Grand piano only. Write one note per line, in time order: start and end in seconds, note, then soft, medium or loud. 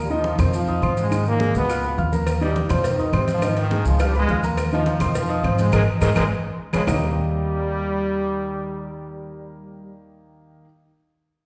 0.10 0.34 D#3 medium
0.10 0.34 D#4 loud
0.10 0.34 D#5 loud
0.39 0.63 C4 medium
0.39 0.63 C5 medium
0.39 0.63 C6 medium
0.68 0.80 D#4 medium
0.68 0.80 D#5 medium
0.68 0.80 D#6 medium
0.82 1.06 C4 medium
0.82 1.06 C5 medium
0.82 1.06 C6 medium
1.11 1.35 D#3 medium
1.11 1.35 D#4 medium
1.11 1.35 D#5 medium
1.40 1.64 G#3 medium
1.40 1.64 G#4 medium
1.40 1.64 G#5 medium
1.69 1.81 F4 medium
1.69 1.81 F5 medium
1.69 1.82 F6 medium
1.84 1.95 B3 medium
1.84 1.96 B4 medium
1.84 1.96 B5 medium
1.98 2.10 F4 medium
1.98 2.10 F5 medium
1.98 2.10 F6 medium
2.12 2.36 A#3 medium
2.12 2.36 A#4 medium
2.12 2.36 A#5 medium
2.41 2.65 D#3 medium
2.41 2.65 D#4 medium
2.41 2.65 D#5 loud
2.70 2.94 C4 medium
2.70 2.94 C5 medium
2.70 2.94 C6 medium
2.99 3.11 D#4 medium
2.99 3.11 D#5 medium
2.99 3.11 D#6 medium
3.13 3.37 C4 medium
3.13 3.37 C5 medium
3.13 3.37 C6 medium
3.43 3.66 D#3 medium
3.43 3.66 D#4 medium
3.43 3.66 D#5 medium
3.71 3.95 G#3 medium
3.71 3.95 G#4 medium
3.71 3.95 G#5 medium
4.00 4.12 F4 medium
4.00 4.12 F5 medium
4.00 4.12 F6 medium
4.15 4.26 B3 medium
4.15 4.27 B4 medium
4.15 4.27 B5 medium
4.30 4.41 F4 medium
4.30 4.41 F5 medium
4.30 4.41 F6 medium
4.44 4.67 A#3 medium
4.44 4.67 A#4 medium
4.44 4.67 A#5 medium
4.73 4.96 D#3 loud
4.73 4.96 D#4 medium
4.73 4.96 D#5 medium
5.01 5.24 C4 medium
5.01 5.25 C5 medium
5.01 5.25 C6 medium
5.29 5.41 D#4 medium
5.29 5.41 D#5 medium
5.29 5.42 D#6 medium
5.44 5.68 C4 medium
5.44 5.68 C5 medium
5.44 5.68 C6 medium
5.73 5.82 G#4 loud
5.73 5.82 A#4 loud
5.73 5.82 D#5 loud
6.01 6.11 G#4 loud
6.01 6.11 A#4 medium
6.01 6.11 D#5 loud
6.16 6.25 G#4 loud
6.16 6.25 A#4 loud
6.16 6.25 D#5 loud
6.73 6.82 G#4 loud
6.73 6.83 B4 loud
6.73 6.82 C#5 loud
6.87 10.64 D#3 medium
6.87 10.64 A#3 medium
6.87 10.64 D#4 medium
6.87 10.64 G4 medium
6.87 10.64 A#4 medium
6.87 10.65 D#5 loud